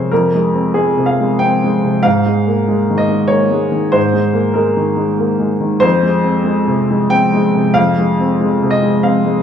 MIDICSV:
0, 0, Header, 1, 2, 480
1, 0, Start_track
1, 0, Key_signature, -4, "minor"
1, 0, Tempo, 646552
1, 81, Time_signature, 3, 2, 24, 8
1, 2000, Tempo, 628272
1, 4880, Tempo, 644468
1, 7088, End_track
2, 0, Start_track
2, 0, Title_t, "Grand piano"
2, 0, Program_c, 0, 0
2, 0, Control_c, 0, 64, 127
2, 0, Note_on_c, 0, 41, 55
2, 0, Note_on_c, 0, 48, 36
2, 0, Note_on_c, 0, 56, 38
2, 0, Note_on_c, 0, 60, 40
2, 0, Note_on_c, 0, 70, 57
2, 0, Note_on_c, 0, 72, 67
2, 0, Note_on_c, 0, 73, 60
2, 0, Note_on_c, 0, 75, 78
2, 77, Note_off_c, 0, 72, 0
2, 85, Note_off_c, 0, 70, 0
2, 85, Note_on_c, 0, 70, 71
2, 94, Control_c, 0, 64, 0
2, 96, Note_off_c, 0, 73, 0
2, 97, Note_off_c, 0, 41, 0
2, 97, Note_off_c, 0, 56, 0
2, 97, Note_off_c, 0, 75, 0
2, 98, Note_on_c, 0, 41, 60
2, 101, Note_off_c, 0, 60, 0
2, 179, Note_off_c, 0, 48, 0
2, 206, Control_c, 0, 64, 127
2, 256, Note_on_c, 0, 56, 37
2, 399, Note_on_c, 0, 60, 45
2, 506, Note_off_c, 0, 56, 0
2, 551, Note_on_c, 0, 68, 63
2, 560, Note_on_c, 0, 56, 37
2, 565, Note_off_c, 0, 70, 0
2, 656, Note_off_c, 0, 60, 0
2, 722, Note_on_c, 0, 48, 40
2, 786, Note_on_c, 0, 77, 67
2, 796, Note_off_c, 0, 68, 0
2, 817, Note_off_c, 0, 56, 0
2, 892, Note_on_c, 0, 56, 40
2, 977, Note_off_c, 0, 48, 0
2, 1032, Note_on_c, 0, 79, 78
2, 1034, Note_off_c, 0, 77, 0
2, 1052, Note_on_c, 0, 60, 44
2, 1142, Note_off_c, 0, 56, 0
2, 1219, Note_on_c, 0, 56, 41
2, 1302, Note_off_c, 0, 60, 0
2, 1365, Note_on_c, 0, 48, 40
2, 1465, Note_off_c, 0, 56, 0
2, 1500, Note_off_c, 0, 41, 0
2, 1504, Note_on_c, 0, 77, 83
2, 1515, Note_on_c, 0, 44, 61
2, 1516, Note_off_c, 0, 79, 0
2, 1523, Note_off_c, 0, 48, 0
2, 1534, Control_c, 0, 64, 0
2, 1644, Control_c, 0, 64, 127
2, 1679, Note_on_c, 0, 56, 40
2, 1830, Note_on_c, 0, 58, 42
2, 1936, Note_off_c, 0, 56, 0
2, 1991, Note_on_c, 0, 56, 42
2, 2092, Note_off_c, 0, 58, 0
2, 2158, Note_on_c, 0, 51, 44
2, 2216, Note_on_c, 0, 75, 68
2, 2235, Note_off_c, 0, 77, 0
2, 2255, Note_off_c, 0, 56, 0
2, 2302, Note_on_c, 0, 56, 38
2, 2418, Note_off_c, 0, 51, 0
2, 2445, Note_on_c, 0, 73, 75
2, 2462, Note_on_c, 0, 58, 43
2, 2471, Note_off_c, 0, 75, 0
2, 2570, Note_off_c, 0, 56, 0
2, 2625, Note_on_c, 0, 56, 46
2, 2730, Note_off_c, 0, 58, 0
2, 2781, Note_on_c, 0, 51, 43
2, 2893, Note_off_c, 0, 56, 0
2, 2930, Note_off_c, 0, 44, 0
2, 2936, Note_on_c, 0, 72, 77
2, 2942, Note_on_c, 0, 44, 58
2, 2947, Note_off_c, 0, 73, 0
2, 2981, Control_c, 0, 64, 0
2, 3051, Note_off_c, 0, 51, 0
2, 3099, Control_c, 0, 64, 127
2, 3100, Note_on_c, 0, 56, 42
2, 3250, Note_on_c, 0, 58, 50
2, 3368, Note_off_c, 0, 56, 0
2, 3408, Note_on_c, 0, 70, 60
2, 3420, Note_on_c, 0, 56, 45
2, 3429, Note_off_c, 0, 72, 0
2, 3522, Note_off_c, 0, 58, 0
2, 3585, Note_on_c, 0, 51, 41
2, 3665, Note_off_c, 0, 70, 0
2, 3687, Note_off_c, 0, 56, 0
2, 3736, Note_on_c, 0, 56, 42
2, 3851, Note_off_c, 0, 51, 0
2, 3903, Note_on_c, 0, 58, 48
2, 4008, Note_off_c, 0, 56, 0
2, 4064, Note_on_c, 0, 56, 39
2, 4171, Note_off_c, 0, 58, 0
2, 4223, Note_on_c, 0, 51, 43
2, 4330, Note_off_c, 0, 56, 0
2, 4361, Note_off_c, 0, 44, 0
2, 4373, Note_on_c, 0, 72, 86
2, 4388, Note_on_c, 0, 41, 67
2, 4393, Note_off_c, 0, 51, 0
2, 4418, Control_c, 0, 64, 0
2, 4548, Note_on_c, 0, 56, 43
2, 4559, Control_c, 0, 64, 127
2, 4709, Note_on_c, 0, 60, 48
2, 4808, Note_off_c, 0, 56, 0
2, 4863, Note_on_c, 0, 56, 49
2, 4971, Note_off_c, 0, 60, 0
2, 5037, Note_on_c, 0, 48, 48
2, 5133, Note_off_c, 0, 56, 0
2, 5209, Note_on_c, 0, 56, 41
2, 5304, Note_off_c, 0, 48, 0
2, 5355, Note_on_c, 0, 79, 88
2, 5356, Note_off_c, 0, 72, 0
2, 5364, Note_on_c, 0, 60, 49
2, 5469, Note_off_c, 0, 56, 0
2, 5533, Note_on_c, 0, 56, 45
2, 5625, Note_off_c, 0, 60, 0
2, 5684, Note_on_c, 0, 48, 41
2, 5789, Note_off_c, 0, 56, 0
2, 5815, Note_off_c, 0, 41, 0
2, 5829, Note_on_c, 0, 77, 93
2, 5838, Note_on_c, 0, 41, 66
2, 5844, Note_off_c, 0, 79, 0
2, 5863, Control_c, 0, 64, 0
2, 5944, Note_off_c, 0, 48, 0
2, 5964, Control_c, 0, 64, 127
2, 6009, Note_on_c, 0, 56, 39
2, 6172, Note_on_c, 0, 60, 47
2, 6262, Note_off_c, 0, 56, 0
2, 6326, Note_on_c, 0, 56, 46
2, 6422, Note_off_c, 0, 60, 0
2, 6489, Note_on_c, 0, 48, 44
2, 6550, Note_on_c, 0, 75, 73
2, 6551, Note_off_c, 0, 77, 0
2, 6578, Note_off_c, 0, 56, 0
2, 6643, Note_on_c, 0, 56, 45
2, 6740, Note_off_c, 0, 48, 0
2, 6793, Note_on_c, 0, 77, 69
2, 6794, Note_off_c, 0, 75, 0
2, 6803, Note_on_c, 0, 60, 46
2, 6897, Note_off_c, 0, 56, 0
2, 6955, Note_on_c, 0, 56, 45
2, 7057, Note_off_c, 0, 60, 0
2, 7088, Note_off_c, 0, 41, 0
2, 7088, Note_off_c, 0, 56, 0
2, 7088, Note_off_c, 0, 77, 0
2, 7088, End_track
0, 0, End_of_file